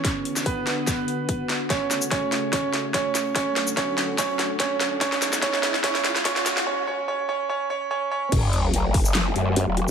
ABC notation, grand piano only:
X:1
M:4/4
L:1/8
Q:"Swing 16ths" 1/4=145
K:F#m
V:1 name="Grand piano"
[Cc]2 [B,B]6 | [Cc] z [Cc]2 [Cc] z [Cc]2 | [Cc] z [Cc]2 [Cc] z [Cc]2 | [Cc] z [Cc] z [Cc] z [Cc] z |
[Cc] [Cc] [Cc] [Cc] [Cc] [Cc] [Cc] [Cc] | z8 |]